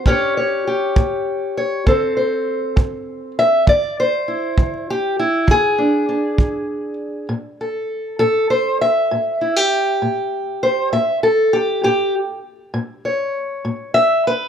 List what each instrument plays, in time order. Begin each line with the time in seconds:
0.06 steel-string acoustic guitar A2 C#4 G4 C#5, kick
0.37 steel-string acoustic guitar C#5
0.67 steel-string acoustic guitar G4
0.96 steel-string acoustic guitar A2, kick
1.57 steel-string acoustic guitar C#5
1.86 steel-string acoustic guitar D3 C4 A4 C5, kick
2.17 steel-string acoustic guitar C5
2.76 steel-string acoustic guitar D3, kick
3.39 steel-string acoustic guitar E5
3.67 steel-string acoustic guitar E3 D5, kick
4.00 steel-string acoustic guitar C5
4.28 steel-string acoustic guitar E4
4.58 steel-string acoustic guitar E3, kick
4.90 steel-string acoustic guitar G4
5.19 steel-string acoustic guitar E4
5.47 steel-string acoustic guitar E3 G#4, kick
5.78 steel-string acoustic guitar D4
6.09 steel-string acoustic guitar D4
6.38 steel-string acoustic guitar E3, kick
7.29 steel-string acoustic guitar A2
7.61 steel-string acoustic guitar A4
8.19 steel-string acoustic guitar A2 A4
8.50 steel-string acoustic guitar C5
8.81 steel-string acoustic guitar E5
9.11 steel-string acoustic guitar A2
9.41 steel-string acoustic guitar E4
9.56 steel-string acoustic guitar G4
10.02 steel-string acoustic guitar A2
10.63 steel-string acoustic guitar C5
10.93 steel-string acoustic guitar A2 E5
11.23 steel-string acoustic guitar A4
11.53 steel-string acoustic guitar G4
11.83 steel-string acoustic guitar A2 G4
12.74 steel-string acoustic guitar A2
13.05 steel-string acoustic guitar C#5
13.65 steel-string acoustic guitar A2
13.94 steel-string acoustic guitar E5
14.27 steel-string acoustic guitar B4